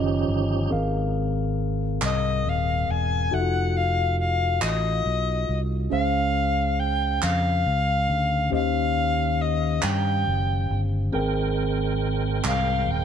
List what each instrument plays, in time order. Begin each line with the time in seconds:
Already playing: fingered electric bass F#1, tine electric piano D#3 C#4 F4 G4 D#5, tonewheel organ F3 C#4 D#4 G4
0.28 fingered electric bass G1
0.70 fingered electric bass G#1, tine electric piano G#2 C4 G#4 A#4 F5
2.02 fingered electric bass C2, recorder D#5, clap
2.45 fingered electric bass D#1, recorder F5
2.89 fingered electric bass E1, recorder G#5
3.31 fingered electric bass F1, tine electric piano D#4 F#4 A4 E5, recorder F#5
3.40 tine electric piano F4
3.77 recorder F5
4.20 recorder F5
4.62 fingered electric bass A1, recorder D#5, clap
5.06 fingered electric bass B1
5.49 fingered electric bass C2
5.90 fingered electric bass C#2, tine electric piano C#3 C#4 G#4 C5 F5, recorder F5
6.80 recorder G5
7.22 fingered electric bass F2, recorder F5, clap
7.66 fingered electric bass C#2
8.10 fingered electric bass D2
8.50 fingered electric bass D#2, tine electric piano D#3 C#4 G4 C5 D#5, recorder F5
8.60 tine electric piano F5
9.41 recorder D#5
9.82 fingered electric bass G2, recorder G5, clap
10.27 fingered electric bass F#1
10.71 fingered electric bass G1
11.12 fingered electric bass G#1, tine electric piano G#2 C4 G#4 A#4 G5, tonewheel organ G#3 B3 A#4 G5
11.20 tonewheel organ C4
12.44 fingered electric bass C2, recorder F5, clap
12.86 fingered electric bass D#1
12.90 recorder G5